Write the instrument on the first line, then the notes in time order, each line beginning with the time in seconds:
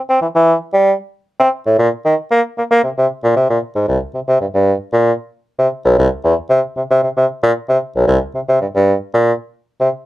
bassoon
0.09 C4
0.22 E3
0.35 E3
0.74 G3
1.40 C4
1.66 A2
1.79 A#2
2.05 D#3
2.31 A#3
2.58 A#3
2.71 A#3
2.84 C3
2.98 C3
3.24 A#2
3.36 C3
3.49 A#2
3.75 G#2
3.88 C2
4.14 C3
4.28 C3
4.41 G2
4.54 G2
4.93 A#2
5.58 C3
5.85 B1
5.98 C2
6.24 E2
6.50 C3
6.76 C3
6.91 C3
7.03 C3
7.17 C3
7.43 A#2
7.69 C3
7.96 B1
8.07 C2
8.34 C3
8.48 C3
8.61 G2
8.75 G2
9.14 A#2
9.80 C3